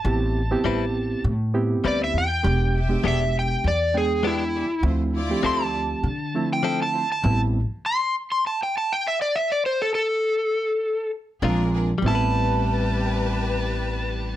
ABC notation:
X:1
M:4/4
L:1/16
Q:"Swing 16ths" 1/4=100
K:Am
V:1 name="Electric slide guitar"
a8 z4 d e g2- | g4 e2 g2 d2 ^G2 E4 | z4 c' a6 g2 a2 a- | a z3 c'2 z c' a g a g e d e d |
c A A8 z6 | a16 |]
V:2 name="String section"
z16 | [G^Gd] z [=Ge]4 z8 [G^Gd] z | [EFc] z [EFd]4 z8 [EFc] z | [CGB] z12 z3 |
z12 [D_A_B]2 [DAB] z | [GB]16 |]
V:3 name="Clean electric guitar"
z4 [G,CEB]2 z6 [G,CEB]2 z2 | z4 [^G,B,D=G]2 z6 [^G,B,D=G]2 z2 | z4 [F,CEA]2 z6 [F,CEA]2 z2 | z16 |
z12 [_A,DF_B]2 z2 | [G,EB]16 |]
V:4 name="Reed electric piano"
[B,CEG]2 z [B,CEG]4- [B,CEG] z2 [B,CEG]4- [B,CEG] z | [^G,B,D=G]2 z [^G,B,D=G]4- [^G,B,D=G] z2 [^G,B,D=g]4- [^G,B,D=g] z | [F,A,CE]2 z [F,A,CG]4- [F,A,CG] z2 [F,A,CE]4- [F,A,CE] z | [G,B,CE]2 z12 z2 |
z12 [_A,CDF]3 z | [G,B,CE]16 |]
V:5 name="Upright bass" clef=bass
A,,,4 A,,,4 A,,4 D,,2 E,,2 | E,,,4 E,,,4 E,,8 | D,,4 D,,4 D,8 | A,,,4 z12 |
z12 _B,,,4 | A,,,16 |]